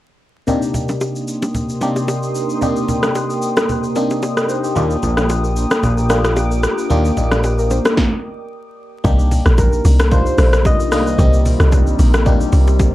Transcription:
0.47 C3 A#3 D4 D#4 G4 A#4 G5 C6 D#6, low conga, shaker
0.62 shaker
0.74 low conga, shaker
0.89 low bongo, shaker
1.01 high bongo, shaker
1.16 shaker
1.28 shaker
1.42 high bongo, low bongo, shaker
1.55 low conga, shaker
1.69 shaker
1.81 C3 A#3 D4 D#4 G4, low bongo, shaker
1.96 high bongo, shaker
2.08 high bongo, shaker
2.23 shaker
2.35 shaker
2.50 shaker
2.61 C3 A#3 D4 D#4 G4, low conga, shaker
2.76 shaker
2.89 low conga, shaker
3.03 cross-stick, low bongo, shaker
3.15 high bongo, shaker
3.30 shaker
3.42 shaker
3.57 cross-stick, high bongo, low bongo, shaker
3.69 low conga, shaker
3.83 shaker
3.95 C3 A#3 D4 D#4 G4, low bongo, shaker
4.10 high bongo, shaker
4.22 high bongo, shaker
4.37 D#5, cross-stick, shaker
4.49 C5, shaker
4.64 G4, shaker
4.75 D#2 A#3 D4 F4 G4 D6, low conga, shaker
4.91 shaker
5.03 A#1, low conga, shaker
5.17 cross-stick, low bongo, shaker
5.29 high bongo, shaker
5.44 shaker
5.56 shaker
5.71 cross-stick, high bongo, low bongo, shaker
5.83 A#1, low conga, shaker
5.98 shaker
6.09 A#3 D4 F4 G4, cross-stick, low bongo, shaker
6.25 cross-stick, high bongo, shaker
6.37 high bongo, shaker
6.51 shaker
6.63 cross-stick, shaker
6.78 shaker
6.90 D#2 A#3 D4 F4 G4, low conga, shaker
7.05 shaker
7.17 A#1 D#4, low conga, shaker
7.31 F4, cross-stick, low bongo, shaker
7.44 G4, high bongo, shaker
7.58 A#4, shaker
7.71 C5, low bongo, shaker
7.85 A#4, cross-stick, high bongo, low bongo, shaker
7.97 kick, snare
9.04 C2 C3 D#3 G3 A#3 D4 D#4 G4, kick, low conga, shaker
9.19 shaker
9.31 open hi-hat, low conga, shaker
9.46 A#1, cross-stick, shaker
9.58 A#4, kick, high bongo, shaker
9.73 shaker
9.85 C2, open hi-hat, low bongo, shaker
9.99 cross-stick, high bongo, low bongo, shaker
10.11 A#3 D4 D#4 F4 C5, kick, low conga, shaker
10.26 shaker
10.38 A#1, cross-stick, open hi-hat, low bongo, shaker
10.53 cross-stick, high bongo, shaker
10.65 D#5, kick, high bongo, shaker
10.80 shaker
10.91 C2 A#3 D4 D#4 F4 D#5, cross-stick, open hi-hat, shaker
11.07 shaker
11.18 C2 A#3 C4 D#4 G4, kick, low conga, shaker
11.33 shaker
11.46 open hi-hat, low conga, shaker
11.60 C2, cross-stick, shaker
11.72 kick, high bongo, shaker
11.87 shaker
11.99 A#1, open hi-hat, low bongo, shaker
12.14 cross-stick, high bongo, low bongo, shaker
12.26 A#3 D4 D#4 G4, kick, low conga, shaker
12.40 shaker
12.52 C2, open hi-hat, low bongo, shaker
12.67 high bongo, shaker
12.79 kick, high bongo, shaker

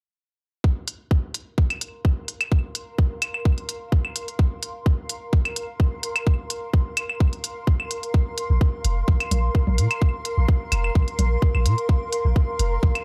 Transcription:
0.64 A#4, kick
0.88 closed hi-hat
1.09 F5 C6, kick
1.34 closed hi-hat
1.58 kick
1.70 closed hi-hat, claves
1.81 closed hi-hat
2.05 kick
2.28 closed hi-hat
2.41 closed hi-hat, claves
2.52 kick
2.75 closed hi-hat
2.98 kick
3.22 closed hi-hat, claves
3.34 claves
3.45 kick
3.58 closed hi-hat
3.69 closed hi-hat
3.92 kick
4.05 claves
4.16 closed hi-hat
4.28 closed hi-hat
4.39 kick
4.63 closed hi-hat
4.86 kick
5.09 closed hi-hat
5.33 kick
5.45 closed hi-hat, claves
5.56 closed hi-hat
5.80 kick
6.03 closed hi-hat
6.16 closed hi-hat, claves
6.27 kick
6.50 closed hi-hat
6.74 kick
6.97 closed hi-hat, claves
7.10 claves
7.20 kick
7.33 closed hi-hat
7.44 closed hi-hat
7.67 kick
7.80 claves
7.91 closed hi-hat
8.03 closed hi-hat
8.14 kick
8.38 closed hi-hat
8.50 A#1
8.61 kick
8.84 F1, closed hi-hat
9.08 A#1, kick
9.20 closed hi-hat, claves
9.31 A#1, closed hi-hat, low conga
9.55 kick
9.67 A#1, low conga
9.78 A#2, closed hi-hat
9.91 closed hi-hat, claves
10.02 kick
10.25 closed hi-hat
10.38 A#1
10.48 kick
10.72 F1, closed hi-hat, claves
10.84 claves
10.95 A#1, kick
11.08 closed hi-hat
11.19 A#1, closed hi-hat, low conga
11.42 kick
11.55 A#1, claves
11.66 A#2, closed hi-hat
11.78 closed hi-hat
11.89 kick
12.13 closed hi-hat
12.25 A#1
12.36 kick
12.59 F1, closed hi-hat
12.83 A#1, kick
12.95 closed hi-hat, claves

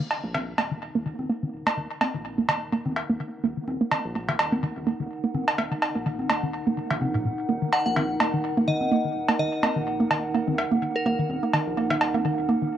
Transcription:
Already playing: D#4
0.10 A#4, cowbell
0.23 A#1 A#3 F#5
0.34 D#3, cowbell, high conga
0.58 D#1 A#3, cowbell
0.71 D#3
0.95 D#1 A#3
1.06 D#3
1.19 D#1, high conga
1.29 A#3
1.43 D#3
1.53 D#1
1.67 A#3, cowbell
1.77 D#1 D#3
2.01 A#3, cowbell, high conga
2.14 A#1 D#3
2.38 A#3
2.49 D#1 D#3, cowbell
2.72 A#3
2.86 D#1 D#3, high conga
2.96 cowbell
3.09 D#1 A#3
3.20 D#3
3.44 D#1 A#3
3.57 D#3
3.68 D#1, high conga
3.81 A#3
3.92 D#3, cowbell
4.05 A#1
4.15 A#3
4.29 D#3, cowbell
4.39 D#1, cowbell
4.52 A#3, high conga
4.63 D#3
4.76 D#1
4.87 A#3
5.00 D#1 D#3
5.24 A#3
5.34 D#1 D#3, high conga
5.48 cowbell
5.58 D#1 A#3, cowbell
5.71 D#3
5.82 cowbell
5.95 A#1 A#3
6.06 D#3
6.19 high conga
6.30 D#1 A#3, cowbell
6.43 D#3
6.67 D#1 A#3
6.77 D#3
6.91 A#1 D#3, cowbell
7.01 C#3, high conga
7.14 A#2
7.25 D#1 A#2
7.49 D#1 A#3
7.62 D#3
7.73 F#5, cowbell
7.86 A#1 A#3 F#5
7.96 D#3, cowbell, high conga
8.20 D#1 A#3, cowbell
8.34 D#3
8.57 D#1 A#3
8.68 D#3 D#5
8.81 D#1, high conga
8.92 A#3
9.05 D#3
9.15 D#1
9.28 A#3, cowbell
9.39 D#1 D#3 D#5
9.63 A#3, cowbell, high conga
9.76 A#1 D#3
10.00 A#3
10.11 D#1 D#3, cowbell
10.34 A#3
10.48 D#1 D#3, high conga
10.58 cowbell
10.71 D#1 A#3
10.82 D#3
10.96 A#4
11.06 D#1 A#3 A#4
11.19 D#3
11.30 D#1, high conga
11.43 A#3
11.53 D#3, cowbell
11.67 A#1
11.77 A#3
11.90 D#3, cowbell
12.01 D#1, cowbell
12.14 A#3, high conga
12.25 D#3
12.38 D#1
12.49 A#3
12.62 D#1 D#3

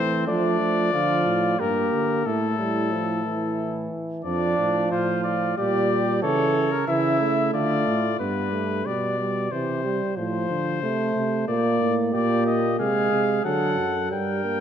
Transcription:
Already playing: E3 A3 C4 C5
0.27 F3 A3 D4 D5
0.60 F3
0.93 D3 F3 F4
1.26 A2
1.59 G2 A#3 G4 A#4
1.93 D3
2.26 A2 A3 E4 A4
2.59 G3
2.92 F3
3.25 E3
4.25 F2 F3 D4 D5
4.59 A2
4.91 A2 F4 C5
5.24 D5
5.57 A#2 G3 G4 D5
6.22 C#3 E3 A4 C#5
6.71 A#4
6.88 C#3 E3 E4 E5
7.21 A3
7.54 D3 F4 D5
7.87 A2
8.20 G2 B3 B4
8.53 A3
8.86 B2 G3 D5
9.19 G3
9.51 C3 E3 C5
9.84 G3
10.17 A2 F3 C5
10.50 D3
10.83 C3 A3
11.16 C3
11.48 A#2 A#3 D5
11.81 A2
12.14 A#2 A#3 G4 D5
12.47 D#5
12.79 C3 G#3 G#4 F5
13.12 C3
13.45 D3 F#3 A4 F#5
13.78 F#2
14.11 G2 G3 A#4 G5
14.45 A#3

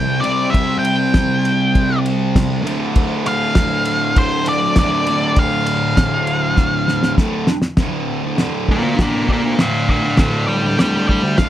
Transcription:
Already playing: C3 G3 C4 G5
0.21 G3 C4 D5, ride
0.27 C3
0.50 C3 G3 E5
0.54 C4, kick, ride
0.79 G5
0.85 ride
1.14 kick, snare, ride
1.45 ride
1.75 kick, ride
2.06 ride
2.36 kick, snare, ride
2.63 D2 A2 D3, ride
2.96 kick, ride
3.26 F5, ride
3.55 kick, snare, ride
3.85 ride
4.16 C5, kick, ride
4.46 D5, ride
4.76 D2 A2 D5, kick, snare, ride
4.81 D3
5.07 D2 A2, ride
5.11 D3
5.36 F5, kick, ride
5.66 ride
5.97 kick, snare, ride
6.27 ride
6.56 kick, snare
6.88 snare
7.03 snare
7.18 D2 A2, kick, snare
7.22 D3
7.47 snare
7.62 snare
7.77 D2 A2, kick, snare, crash
7.83 D3
8.23 A2 D3
8.37 D2 A2 D3, snare, crash
8.69 F4 D5, kick
8.82 muted distorted electric guitar stroke
8.96 D2 A2 D3, kick, snare, crash
9.01 F4 D5
9.11 A2 D3
9.27 D2 A2 D3, kick
9.32 F4 D5
9.43 muted distorted electric guitar stroke
9.57 D2 A2 D3 D5, snare, crash
9.61 F5
9.88 D2 A2 D3 D5 F5, kick
10.03 A2 D3
10.17 D2 A2 D3 D5 F5, kick, snare, crash
10.48 D5 G5
10.63 A2 D3
10.78 D2 A2 D3 D5 G5, snare, crash
11.07 D5 G5, kick
11.23 muted distorted electric guitar stroke
11.38 D2 A2 F5, kick, snare, crash
11.42 D3

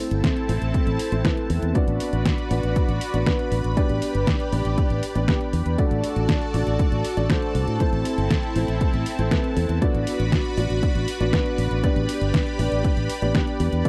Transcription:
Already playing: A3 C4 E4 A4 C5 A5
0.11 G1, closed hi-hat
0.24 kick, snare, closed hi-hat
0.37 closed hi-hat
0.49 A1 A3 C4 E4 C5, open hi-hat
0.62 A1, closed hi-hat
0.74 kick, closed hi-hat
0.87 A1, closed hi-hat
0.99 open hi-hat
1.12 A1 A3 C4 E4 C5, closed hi-hat
1.25 A3 C4 E4 B4, kick, snare, closed hi-hat
1.37 closed hi-hat
1.50 E2, open hi-hat
1.62 E2, closed hi-hat
1.75 B3 D4 F#4 B4 D5 B5, kick, closed hi-hat
1.88 A1, closed hi-hat
2.00 open hi-hat
2.13 A1, closed hi-hat
2.25 kick, snare, closed hi-hat
2.38 closed hi-hat
2.51 A1 B3 D4 F#4 D5, open hi-hat
2.63 A1, closed hi-hat
2.76 kick, closed hi-hat
2.89 A1, closed hi-hat
3.01 open hi-hat
3.14 A1 B3 D4 F#4 D5, closed hi-hat
3.26 B3 D4 F#4 B4, kick, snare, closed hi-hat
3.39 closed hi-hat
3.52 A1, open hi-hat
3.64 A1, closed hi-hat
3.77 B3 D4 G4 D5, kick, closed hi-hat
3.89 A1, closed hi-hat
4.02 open hi-hat
4.15 G1, closed hi-hat
4.27 kick, snare, closed hi-hat
4.40 closed hi-hat
4.52 A1 B3 D4 G4 D5, open hi-hat
4.65 A1, closed hi-hat
4.78 kick, closed hi-hat
4.90 A1, closed hi-hat
5.03 open hi-hat
5.15 A1 B3 D4 G4 D5, closed hi-hat
5.28 B3 D4 G4 B4, kick, snare, closed hi-hat
5.41 closed hi-hat
5.53 E2, open hi-hat
5.66 E2, closed hi-hat
5.78 A3 D4 F#4 A4 D5 A5, kick, closed hi-hat
5.91 A1, closed hi-hat
6.04 open hi-hat
6.16 A1, closed hi-hat
6.29 kick, snare, closed hi-hat
6.42 closed hi-hat
6.54 A1 A3 D4 F#4 D5, open hi-hat
6.67 A1, closed hi-hat
6.79 kick, closed hi-hat
6.92 A1, closed hi-hat
7.05 open hi-hat
7.17 A1 A3 D4 F#4 D5, closed hi-hat
7.30 A3 D4 F#4 C5, kick, snare, closed hi-hat
7.42 closed hi-hat
7.55 C2, open hi-hat
7.67 A2, closed hi-hat
7.80 A3 C4 E4 C5, kick, closed hi-hat
7.93 A1, closed hi-hat
8.05 open hi-hat
8.18 G1, closed hi-hat
8.30 kick, snare, closed hi-hat
8.43 closed hi-hat
8.56 A1 A3 C4 E4 C5, open hi-hat
8.68 A1, closed hi-hat
8.81 kick, closed hi-hat
8.94 A1, closed hi-hat
9.06 open hi-hat
9.19 A1 A3 C4 E4 C5, closed hi-hat
9.31 A3 C4 E4 B4, kick, snare, closed hi-hat
9.44 closed hi-hat
9.57 E2, open hi-hat
9.69 E2, closed hi-hat
9.82 B3 D4 F#4 B4 D5 B5, kick, closed hi-hat
9.94 A1, closed hi-hat
10.07 open hi-hat
10.20 A1, closed hi-hat
10.32 kick, snare, closed hi-hat
10.45 closed hi-hat
10.57 A1 B3 D4 F#4 D5, open hi-hat
10.70 A1, closed hi-hat
10.83 kick, closed hi-hat
10.95 A1, closed hi-hat
11.08 open hi-hat
11.20 A1 B3 D4 F#4 D5, closed hi-hat
11.33 B3 D4 F#4 B4, kick, snare, closed hi-hat
11.46 closed hi-hat
11.58 A1, open hi-hat
11.71 A1, closed hi-hat
11.83 B3 D4 G4 D5 B5, kick, closed hi-hat
11.96 A1, closed hi-hat
12.09 open hi-hat
12.21 G1, closed hi-hat
12.34 kick, snare, closed hi-hat
12.47 closed hi-hat
12.59 A1 B3 D4 G4 D5, open hi-hat
12.72 A1, closed hi-hat
12.84 kick, closed hi-hat
12.97 A1, closed hi-hat
13.10 open hi-hat
13.22 A1 B3 D4 G4 D5, closed hi-hat
13.35 B3 D4 G4 B4, kick, snare, closed hi-hat
13.47 closed hi-hat
13.60 E2, open hi-hat
13.73 E2, closed hi-hat
13.85 A3 D4 F#4 A4 D5 A5, kick, closed hi-hat

